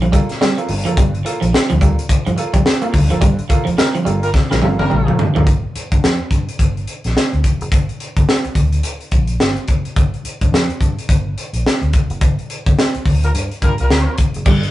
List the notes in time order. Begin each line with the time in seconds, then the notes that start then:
0.02 G2 D3 F3, closed hi-hat
0.12 G3 A#3 F4 A4, kick, closed hi-hat
0.29 snare, closed hi-hat
0.41 G3, snare
0.57 A#3 F4 A4, muted clean electric guitar stroke, closed hi-hat
0.69 G1 G2 D3, open hi-hat
0.85 F#1 F3 A#3 F4 A4, closed hi-hat
0.97 G1 G2 D3 G3, kick, closed hi-hat
1.15 closed hi-hat
1.25 A#3 F4 A4, muted clean electric guitar stroke, closed hi-hat
1.41 A#1 F3 F4 A4, closed hi-hat
1.53 muted clean electric guitar stroke, muted fingered electric bass stroke, snare
1.70 D2 G2 D3 F3, closed hi-hat
1.81 G3 A#3 F4 A4, kick, closed hi-hat
1.99 closed hi-hat
2.09 F4 A4, muted fingered electric bass stroke, kick, closed hi-hat
2.26 G2 D3 F3, closed hi-hat
2.37 A#3 F4 A4, muted clean electric guitar stroke, closed hi-hat
2.54 F2 G3, kick, closed hi-hat
2.66 snare
2.82 A#3 F4 A4, closed hi-hat
2.93 D2 G2 D3, muted clean electric guitar stroke, kick, open hi-hat
3.10 F#1 F3 A#3 F4 A4, closed hi-hat
3.21 G1 G2 D3 G3, kick, closed hi-hat
3.39 closed hi-hat
3.49 A#3 F4 A4, muted clean electric guitar stroke, kick, closed hi-hat
3.65 F1 F3 F4 A4, closed hi-hat
3.78 G3 A#3 F4 A#4, muted clean electric guitar stroke, snare
3.95 G2 D3 F3, closed hi-hat
4.05 G1 G3 A#3 F4 A4, closed hi-hat
4.23 G3 A#3 F4 A#4, closed hi-hat
4.34 F4 A4, muted clean electric guitar stroke, kick, snare
4.50 A#1 G2 D3 F3 G3 A#3 F4 A#4, snare
4.62 G1 G3 A#3 F4 A4, high tom
4.79 G1 G3 A#3 F4 A#4, high tom
4.90 A#1 G3, mid tom
5.07 F2 A#3 F4 A4, muted clean electric guitar stroke, mid tom
5.19 G2 D3, floor tom
5.35 D2 F3 A#3 F4 A4, floor tom
5.47 G1, kick, closed hi-hat
5.76 muted fingered electric bass stroke, closed hi-hat
5.92 G2, kick, closed hi-hat
6.04 F2, snare
6.31 G2, kick, closed hi-hat
6.49 closed hi-hat
6.59 G1, kick, closed hi-hat
6.77 closed hi-hat
6.87 closed hi-hat
7.04 A#1, snare, closed hi-hat
7.17 snare
7.33 D2, closed hi-hat
7.44 F1, kick, closed hi-hat
7.61 F#1, closed hi-hat
7.72 G1, kick, closed hi-hat
7.89 closed hi-hat
8.00 closed hi-hat
8.17 G1, kick, closed hi-hat
8.29 snare
8.45 muted fingered electric bass stroke, closed hi-hat
8.55 D2, kick, closed hi-hat
8.73 closed hi-hat
8.83 closed hi-hat
9.01 closed hi-hat
9.11 A#1, kick, closed hi-hat
9.27 closed hi-hat
9.40 G1, snare
9.56 closed hi-hat
9.68 F#1, kick, closed hi-hat
9.85 closed hi-hat
9.96 G1, kick, closed hi-hat
10.14 closed hi-hat
10.24 muted fingered electric bass stroke, closed hi-hat
10.41 G2, kick, closed hi-hat
10.52 F2, snare
10.70 closed hi-hat
10.81 G2, kick, closed hi-hat
10.99 closed hi-hat
11.09 G1, kick, closed hi-hat
11.38 closed hi-hat
11.53 A#1, closed hi-hat
11.66 snare
11.82 D2, closed hi-hat
11.93 F1, kick, closed hi-hat
12.10 F#1, closed hi-hat
12.21 G1, kick, closed hi-hat
12.39 closed hi-hat
12.50 closed hi-hat
12.66 G1, kick, closed hi-hat
12.79 snare
12.95 muted fingered electric bass stroke, closed hi-hat
13.06 D2, kick, open hi-hat
13.23 G3 A#3 F4 A#4, closed hi-hat
13.35 G2, closed hi-hat
13.51 closed hi-hat
13.62 G2 G3 A#3 F4 A#4, kick, closed hi-hat
13.78 C2 G3 A#3 F4 A#4, closed hi-hat
13.90 D2, snare
14.18 F1, kick, closed hi-hat
14.34 F#1, closed hi-hat
14.46 G1 G2 D3 G3, kick, crash
14.63 closed hi-hat